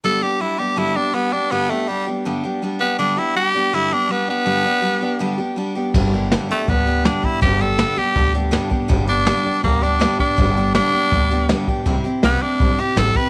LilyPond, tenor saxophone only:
\new Staff \with { instrumentName = "Tenor saxophone" } { \time 4/4 \key g \major \tempo 4 = 162 a'8 g'8 e'8 g'8 e'8 d'8 b8 d'8 | b8 a8 g8 r2 b8 | d'8 e'8 g'4 e'8 d'8 b8 b8~ | b2~ b8 r4. |
r4. a8 b4 d'8 e'8 | g'8 a'4 g'4 r4. | r8 d'4. bes8 d'4 d'8~ | d'4 d'2 r4 |
r4 b8 d'4 g'8 a'8 b'8 | }